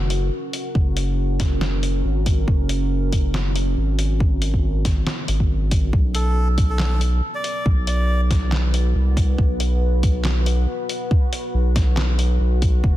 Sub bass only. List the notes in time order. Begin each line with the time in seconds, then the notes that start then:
Already playing: F#1
0.75 F#1
2.05 G#1
2.48 F#1
3.77 G#1
5.28 G#1
5.93 B1
7.66 B1
8.95 C2
9.38 B1
11.54 B1
12.40 B1
12.84 F#1